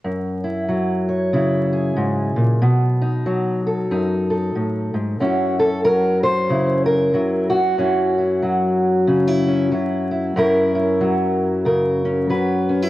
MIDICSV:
0, 0, Header, 1, 2, 480
1, 0, Start_track
1, 0, Tempo, 645856
1, 29, Time_signature, 4, 2, 24, 8
1, 9584, End_track
2, 0, Start_track
2, 0, Title_t, "Steel-string acoustic guitar"
2, 0, Program_c, 0, 25
2, 32, Note_on_c, 0, 42, 66
2, 326, Note_on_c, 0, 64, 47
2, 510, Note_on_c, 0, 54, 53
2, 807, Note_on_c, 0, 73, 49
2, 985, Note_off_c, 0, 64, 0
2, 988, Note_on_c, 0, 49, 57
2, 994, Note_on_c, 0, 64, 55
2, 1281, Note_off_c, 0, 73, 0
2, 1284, Note_on_c, 0, 68, 50
2, 1458, Note_off_c, 0, 42, 0
2, 1461, Note_on_c, 0, 44, 55
2, 1751, Note_off_c, 0, 44, 0
2, 1754, Note_on_c, 0, 46, 57
2, 1923, Note_off_c, 0, 49, 0
2, 1926, Note_off_c, 0, 64, 0
2, 1926, Note_off_c, 0, 68, 0
2, 1944, Note_on_c, 0, 47, 68
2, 1945, Note_off_c, 0, 46, 0
2, 2240, Note_on_c, 0, 63, 51
2, 2419, Note_off_c, 0, 54, 0
2, 2422, Note_on_c, 0, 54, 59
2, 2725, Note_on_c, 0, 69, 51
2, 2899, Note_off_c, 0, 63, 0
2, 2904, Note_off_c, 0, 47, 0
2, 2905, Note_on_c, 0, 42, 59
2, 2908, Note_on_c, 0, 63, 54
2, 3188, Note_off_c, 0, 69, 0
2, 3197, Note_on_c, 0, 69, 48
2, 3381, Note_off_c, 0, 42, 0
2, 3384, Note_on_c, 0, 45, 55
2, 3668, Note_off_c, 0, 45, 0
2, 3671, Note_on_c, 0, 44, 53
2, 3839, Note_off_c, 0, 54, 0
2, 3842, Note_off_c, 0, 69, 0
2, 3843, Note_off_c, 0, 63, 0
2, 3862, Note_off_c, 0, 44, 0
2, 3868, Note_on_c, 0, 42, 73
2, 3873, Note_on_c, 0, 61, 50
2, 3879, Note_on_c, 0, 64, 49
2, 3882, Note_on_c, 0, 66, 48
2, 4155, Note_off_c, 0, 66, 0
2, 4158, Note_on_c, 0, 69, 88
2, 4342, Note_off_c, 0, 69, 0
2, 4343, Note_on_c, 0, 54, 61
2, 4345, Note_on_c, 0, 70, 93
2, 4629, Note_off_c, 0, 70, 0
2, 4632, Note_on_c, 0, 72, 104
2, 4826, Note_on_c, 0, 49, 63
2, 4828, Note_off_c, 0, 64, 0
2, 4831, Note_on_c, 0, 64, 49
2, 5094, Note_off_c, 0, 72, 0
2, 5097, Note_on_c, 0, 70, 90
2, 5301, Note_off_c, 0, 54, 0
2, 5304, Note_off_c, 0, 49, 0
2, 5304, Note_on_c, 0, 54, 62
2, 5309, Note_off_c, 0, 64, 0
2, 5312, Note_on_c, 0, 64, 46
2, 5570, Note_off_c, 0, 70, 0
2, 5573, Note_on_c, 0, 66, 81
2, 5779, Note_off_c, 0, 42, 0
2, 5782, Note_on_c, 0, 42, 74
2, 5783, Note_off_c, 0, 61, 0
2, 5786, Note_on_c, 0, 61, 52
2, 5790, Note_off_c, 0, 64, 0
2, 5793, Note_on_c, 0, 64, 50
2, 5815, Note_off_c, 0, 54, 0
2, 6078, Note_off_c, 0, 64, 0
2, 6081, Note_on_c, 0, 64, 44
2, 6262, Note_on_c, 0, 54, 64
2, 6742, Note_off_c, 0, 64, 0
2, 6742, Note_on_c, 0, 49, 65
2, 6745, Note_off_c, 0, 61, 0
2, 6745, Note_on_c, 0, 61, 49
2, 6892, Note_off_c, 0, 61, 0
2, 6892, Note_on_c, 0, 64, 42
2, 7038, Note_on_c, 0, 61, 45
2, 7217, Note_off_c, 0, 64, 0
2, 7218, Note_off_c, 0, 54, 0
2, 7221, Note_on_c, 0, 54, 64
2, 7223, Note_off_c, 0, 49, 0
2, 7226, Note_on_c, 0, 64, 49
2, 7512, Note_off_c, 0, 64, 0
2, 7515, Note_on_c, 0, 64, 47
2, 7693, Note_off_c, 0, 66, 0
2, 7695, Note_off_c, 0, 42, 0
2, 7698, Note_on_c, 0, 42, 78
2, 7702, Note_off_c, 0, 61, 0
2, 7705, Note_on_c, 0, 61, 65
2, 7707, Note_off_c, 0, 64, 0
2, 7710, Note_on_c, 0, 64, 66
2, 7716, Note_on_c, 0, 70, 72
2, 7732, Note_off_c, 0, 54, 0
2, 7986, Note_off_c, 0, 64, 0
2, 7989, Note_on_c, 0, 64, 59
2, 8179, Note_on_c, 0, 54, 61
2, 8658, Note_on_c, 0, 49, 67
2, 8663, Note_off_c, 0, 70, 0
2, 8665, Note_on_c, 0, 70, 63
2, 8946, Note_off_c, 0, 61, 0
2, 8955, Note_on_c, 0, 61, 55
2, 9134, Note_off_c, 0, 54, 0
2, 9137, Note_on_c, 0, 54, 61
2, 9138, Note_off_c, 0, 70, 0
2, 9141, Note_on_c, 0, 71, 61
2, 9142, Note_off_c, 0, 49, 0
2, 9422, Note_off_c, 0, 61, 0
2, 9428, Note_off_c, 0, 64, 0
2, 9431, Note_on_c, 0, 61, 54
2, 9530, Note_off_c, 0, 61, 0
2, 9530, Note_on_c, 0, 64, 47
2, 9584, Note_off_c, 0, 42, 0
2, 9584, Note_off_c, 0, 54, 0
2, 9584, Note_off_c, 0, 64, 0
2, 9584, Note_off_c, 0, 71, 0
2, 9584, End_track
0, 0, End_of_file